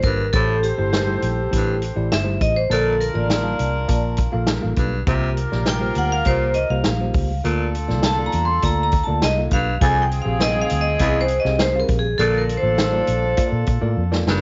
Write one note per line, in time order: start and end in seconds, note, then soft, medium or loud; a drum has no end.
0.00 0.29 G#1 medium
0.00 0.20 A#3 medium
0.00 0.20 F4 medium
0.00 0.20 A4 medium
0.00 0.35 A#4 medium
0.00 0.20 C5 medium
0.00 kick loud
0.00 closed hi-hat medium
0.05 0.28 G2 medium
0.33 0.71 A1 loud
0.33 1.19 A2 medium
0.33 0.58 A2 medium
0.33 0.64 A3 medium
0.33 0.64 E4 medium
0.33 0.64 G4 medium
0.33 2.37 G4 medium
0.33 0.64 A4 medium
0.33 2.38 A4 medium
0.33 0.64 C5 medium
0.33 2.38 C5 medium
0.33 kick loud
0.33 closed hi-hat medium
0.63 0.92 G4 medium
0.63 closed hi-hat medium
0.78 1.16 G1 medium
0.78 0.98 A3 medium
0.78 0.99 E4 medium
0.78 0.99 G4 medium
0.78 0.99 C5 medium
0.93 1.78 G4 medium
0.93 snare loud
0.93 closed hi-hat medium
1.07 1.38 A3 medium
1.07 1.38 E4 medium
1.07 1.38 G4 medium
1.07 1.38 C5 medium
1.22 1.48 A#1 medium
1.22 closed hi-hat medium
1.51 1.90 A1 medium
1.51 1.76 G2 medium
1.51 1.82 A3 medium
1.51 1.82 E4 medium
1.51 1.82 G4 medium
1.51 1.82 A4 medium
1.51 kick medium
1.51 closed hi-hat loud
1.82 closed hi-hat medium
1.96 2.09 A1 medium
1.96 2.17 A3 medium
1.96 2.17 E4 medium
1.96 2.17 G4 medium
1.96 2.17 D5 medium
2.12 2.37 G1 medium
2.12 2.39 E5 loud
2.12 snare loud
2.12 closed hi-hat loud
2.24 2.56 A3 medium
2.24 2.56 E4 medium
2.24 2.56 G4 medium
2.24 2.56 C5 medium
2.41 2.66 A1 medium
2.41 2.57 D#5 loud
2.41 kick medium
2.41 closed hi-hat medium
2.56 2.63 C5 medium
2.69 3.08 A#1 loud
2.69 2.95 A#2 medium
2.69 3.55 D3 medium
2.69 3.01 A#3 medium
2.69 4.74 D4 medium
2.69 3.01 F4 medium
2.69 4.74 F4 medium
2.69 3.01 A4 loud
2.69 4.74 A#4 medium
2.69 3.01 D5 medium
2.69 3.01 A5 medium
2.69 closed hi-hat medium
3.01 3.07 A#4 medium
3.01 closed hi-hat medium
3.14 3.53 A1 medium
3.14 3.35 A#3 medium
3.14 3.35 F4 medium
3.14 3.35 A4 medium
3.14 3.35 D5 medium
3.14 4.00 D5 medium
3.30 snare loud
3.30 closed hi-hat medium
3.43 3.75 A#3 medium
3.43 3.74 F4 medium
3.43 3.75 F5 medium
3.43 3.75 A5 medium
3.59 3.85 C2 medium
3.59 closed hi-hat medium
3.88 4.27 A#1 medium
3.88 4.19 A#3 medium
3.88 4.19 F4 medium
3.88 4.19 D5 medium
3.88 4.19 A5 medium
3.88 kick medium
3.88 closed hi-hat medium
4.17 kick medium
4.17 closed hi-hat medium
4.32 4.59 A#1 medium
4.32 4.53 A#3 medium
4.32 4.53 F4 medium
4.32 4.54 A4 medium
4.32 4.53 F5 medium
4.47 snare loud
4.47 closed hi-hat loud
4.62 4.76 A1 medium
4.62 4.93 A#3 medium
4.62 4.93 F4 medium
4.62 4.93 A4 medium
4.62 4.93 F5 medium
4.76 5.03 B1 medium
4.76 5.01 G2 medium
4.76 kick medium
4.76 closed hi-hat medium
5.07 5.45 C2 loud
5.07 5.31 C3 medium
5.07 5.92 C3 medium
5.07 5.38 A#3 medium
5.07 7.11 F4 medium
5.07 5.38 F4 medium
5.07 7.11 G4 medium
5.07 5.38 G4 medium
5.07 7.11 A#4 loud
5.07 5.38 C5 medium
5.07 kick loud
5.07 closed hi-hat medium
5.37 closed hi-hat medium
5.51 5.90 A#1 medium
5.51 5.72 A#3 medium
5.51 5.72 F4 medium
5.51 5.72 G4 medium
5.51 5.72 D5 medium
5.51 snare soft
5.66 5.99 G5 medium
5.66 snare loud
5.66 closed hi-hat loud
5.81 6.12 A#3 medium
5.81 6.12 F4 medium
5.81 6.12 G4 medium
5.81 6.12 C5 medium
5.95 6.21 D2 medium
5.95 6.12 F#5 loud
5.95 closed hi-hat medium
6.12 6.27 F5 loud
6.25 6.64 C2 medium
6.25 6.50 A#2 medium
6.25 6.56 A#3 medium
6.25 6.56 F4 medium
6.25 6.56 G4 medium
6.25 6.57 C5 medium
6.25 kick medium
6.25 closed hi-hat medium
6.54 6.70 D#5 medium
6.54 closed hi-hat medium
6.70 6.83 C2 medium
6.70 6.91 A#3 medium
6.70 6.91 F4 medium
6.70 6.91 G4 medium
6.70 6.91 C5 medium
6.70 7.55 F5 medium
6.84 7.11 A#1 loud
6.84 snare loud
6.84 closed hi-hat medium
7.00 7.31 A#3 medium
7.00 7.31 F4 medium
7.00 7.31 G4 medium
7.00 7.31 C5 medium
7.14 7.40 C#2 medium
7.14 kick loud
7.14 open hi-hat medium
7.44 7.91 D2 loud
7.44 7.68 A#2 medium
7.44 8.29 D3 medium
7.44 7.75 A#3 medium
7.44 9.48 D4 medium
7.44 9.48 F4 medium
7.44 7.75 F4 medium
7.44 9.48 A4 loud
7.44 7.75 A4 medium
7.44 7.75 D5 loud
7.44 closed hi-hat medium
7.75 closed hi-hat medium
7.88 8.27 C2 medium
7.88 8.09 A#3 medium
7.88 8.09 F4 medium
7.88 8.09 A4 medium
7.88 8.09 D5 medium
7.88 snare soft
8.03 8.13 A5 loud
8.03 snare loud
8.03 closed hi-hat loud
8.18 8.49 A#3 medium
8.18 8.49 F4 medium
8.18 8.49 A4 medium
8.18 8.49 D5 medium
8.26 8.43 A#5 loud
8.32 8.58 E2 medium
8.32 closed hi-hat medium
8.45 8.63 C6 loud
8.62 9.01 D2 loud
8.62 8.93 A#3 medium
8.62 8.93 F4 medium
8.62 8.93 A4 medium
8.62 8.94 D5 medium
8.62 8.73 A#5 loud
8.62 kick medium
8.62 closed hi-hat loud
8.83 9.03 A#5 loud
8.92 kick medium
8.92 closed hi-hat medium
9.04 9.28 A#3 medium
9.04 9.28 F4 medium
9.04 9.28 A4 medium
9.04 9.28 D5 medium
9.04 9.23 A5 medium
9.08 9.20 D2 medium
9.22 9.47 C2 loud
9.22 9.36 D#5 loud
9.22 snare loud
9.22 closed hi-hat loud
9.37 9.68 A#3 medium
9.37 9.68 F4 medium
9.37 9.68 A4 medium
9.37 9.68 F5 medium
9.51 9.77 B1 medium
9.51 9.76 G2 medium
9.51 9.83 F5 loud
9.51 kick medium
9.51 closed hi-hat medium
9.81 10.19 C2 loud
9.81 10.05 F2 medium
9.81 10.67 C3 medium
9.81 10.12 C4 medium
9.81 11.86 C4 medium
9.81 11.86 F4 medium
9.81 10.12 G#4 medium
9.81 11.85 G#4 loud
9.81 10.12 F5 medium
9.81 10.12 G5 medium
9.81 10.02 G#5 loud
9.81 kick loud
9.81 closed hi-hat medium
10.02 10.22 G5 medium
10.11 closed hi-hat medium
10.22 10.46 C4 medium
10.22 10.46 G4 medium
10.22 10.46 G#4 medium
10.22 10.30 F5 medium
10.26 10.64 A#1 medium
10.26 10.46 F5 medium
10.40 10.62 D#5 loud
10.40 snare loud
10.40 closed hi-hat medium
10.55 10.86 C4 medium
10.55 10.86 G#4 medium
10.55 10.86 F5 medium
10.55 10.86 G5 medium
10.62 10.81 F5 medium
10.70 10.96 D2 medium
10.70 closed hi-hat medium
10.81 11.21 D#5 medium
10.99 11.38 C2 medium
10.99 11.24 E2 medium
10.99 11.31 C4 medium
10.99 11.31 G#4 medium
10.99 11.31 F5 medium
10.99 11.31 G5 medium
10.99 kick medium
10.99 closed hi-hat loud
11.21 11.39 C5 medium
11.28 closed hi-hat medium
11.40 11.60 D#5 medium
11.45 11.82 C2 medium
11.45 11.65 C4 medium
11.45 11.65 G4 medium
11.45 11.65 G#4 medium
11.45 11.65 F5 medium
11.45 snare soft
11.59 11.78 C5 loud
11.59 snare loud
11.59 closed hi-hat loud
11.75 12.05 C4 medium
11.75 12.05 G4 medium
11.75 12.05 G#4 medium
11.75 12.06 F5 medium
11.80 11.98 A#4 medium
11.88 12.14 A#1 medium
11.88 kick loud
11.88 closed hi-hat medium
11.99 12.19 G#4 medium
12.18 12.57 A#1 loud
12.18 12.43 A#2 loud
12.18 13.04 D3 medium
12.18 12.49 A#3 medium
12.18 14.23 D4 loud
12.18 14.23 F4 medium
12.18 12.50 F4 medium
12.18 12.39 A4 medium
12.18 12.50 A4 medium
12.18 14.23 A4 loud
12.18 12.50 D5 medium
12.18 closed hi-hat medium
12.38 12.47 A#4 medium
12.49 closed hi-hat medium
12.57 13.43 C5 medium
12.62 13.01 A1 medium
12.62 12.83 A#3 medium
12.62 12.84 F4 medium
12.62 12.84 A4 medium
12.62 12.84 C5 medium
12.78 snare loud
12.78 closed hi-hat medium
12.92 13.23 A#3 medium
12.92 13.23 F4 medium
12.92 13.23 A4 medium
12.92 13.24 D5 medium
13.07 13.33 A#1 medium
13.07 closed hi-hat medium
13.37 13.68 A#3 medium
13.37 13.68 F4 medium
13.37 13.68 A4 medium
13.37 13.68 D5 loud
13.37 kick medium
13.37 closed hi-hat loud
13.52 13.65 A#2 loud
13.66 13.80 A#2 medium
13.66 kick medium
13.66 closed hi-hat medium
13.81 13.95 A2 medium
13.81 14.02 A#3 loud
13.81 14.02 F4 medium
13.81 14.03 A4 medium
13.81 14.03 D5 medium
13.97 14.22 F2 loud
14.12 14.41 A#3 medium
14.12 14.41 F4 medium
14.12 14.41 A4 medium
14.12 14.41 D5 medium
14.12 snare medium
14.26 14.39 F#1 medium
14.26 14.41 G2 medium
14.26 snare loud